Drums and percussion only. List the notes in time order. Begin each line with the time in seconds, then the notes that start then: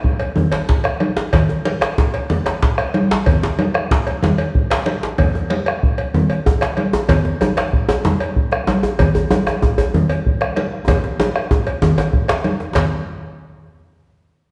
0.04 bombo low
0.20 cowbell, djembe slap, high conga
0.36 high conga, low conga, djembe bass
0.51 bombo rim, cowbell, djembe slap, djembe tone
0.69 bombo low, djembe slap
0.84 bombo rim, cowbell, djembe slap, high conga
1.00 bombo rim, cowbell, high conga
1.17 bombo rim, djembe slap
1.33 bombo low, cowbell, djembe slap, djembe bass, low conga
1.49 djembe slap, djembe tone
1.65 bombo rim, cowbell, high conga
1.81 bombo rim, cowbell, djembe slap
1.98 bombo low, djembe slap
2.14 cowbell, djembe slap, high conga
2.30 high conga, low conga, djembe bass
2.46 bombo rim, cowbell, djembe slap, djembe tone
2.63 bombo low, djembe slap
2.78 bombo rim, cowbell, djembe slap, high conga
2.94 bombo rim, cowbell, high conga
3.11 bombo rim, djembe slap
3.26 bombo low, cowbell, low conga, djembe bass
3.43 djembe slap, high conga, djembe tone
3.58 bombo rim, cowbell, high conga
3.74 bombo rim, cowbell
3.91 bombo low, djembe slap
4.07 cowbell, djembe slap
4.23 bombo rim, djembe slap, high conga, low conga, djembe bass
4.38 cowbell, djembe tone, high conga
4.54 bombo low, djembe slap, high conga
4.70 bombo rim, cowbell, djembe slap
4.86 cowbell, high conga
5.03 bombo rim, djembe slap
5.18 bombo low, cowbell, low conga, djembe bass
5.35 djembe slap, djembe tone
5.50 bombo rim, cowbell, high conga
5.66 bombo rim, cowbell
5.83 bombo low
5.98 cowbell, djembe slap, high conga
6.14 high conga, djembe bass, low conga
6.30 bombo rim, cowbell, djembe tone
6.46 bombo low, djembe tone
6.61 bombo rim, cowbell, djembe slap, high conga
6.77 bombo rim, cowbell, high conga
6.93 bombo rim, djembe tone
7.09 bombo low, cowbell, djembe slap, low conga, djembe bass
7.25 djembe slap, djembe tone
7.41 cowbell, high conga, djembe tone
7.57 bombo rim, cowbell, djembe slap
7.73 bombo low
7.89 cowbell, djembe slap, djembe tone, high conga
8.05 djembe slap, high conga, low conga, djembe bass
8.21 bombo rim, cowbell, djembe tone
8.37 bombo low
8.52 bombo rim, cowbell, djembe slap, high conga
8.68 bombo rim, cowbell, djembe tone, high conga
8.83 bombo rim, djembe tone
8.99 bombo low, cowbell, djembe tone, djembe bass, low conga
9.15 djembe slap, djembe tone, djembe bass
9.31 bombo rim, cowbell, high conga, djembe tone
9.47 bombo rim, cowbell, djembe tone
9.62 bombo low, djembe tone
9.78 cowbell, djembe slap, high conga, djembe bass
9.94 high conga, djembe bass, low conga
10.10 bombo rim, cowbell, djembe tone
10.26 bombo low
10.41 bombo rim, cowbell, djembe slap, high conga
10.57 bombo rim, cowbell, high conga
10.74 bombo rim
10.88 bombo low, cowbell, djembe tone, djembe bass, low conga
11.04 djembe slap, djembe tone
11.20 cowbell, djembe tone, high conga
11.35 bombo rim, cowbell, djembe slap
11.51 bombo rim, bombo low, djembe tone
11.67 cowbell, djembe slap
11.82 djembe tone, high conga, low conga, djembe bass
11.98 bombo rim, cowbell, djembe tone
12.13 bombo rim, bombo low
12.28 bombo rim, cowbell, djembe slap, djembe bass
12.44 bombo rim, cowbell, djembe slap, high conga
12.60 bombo rim, djembe slap, high conga
12.75 bombo low, cowbell, djembe slap, djembe bass, low conga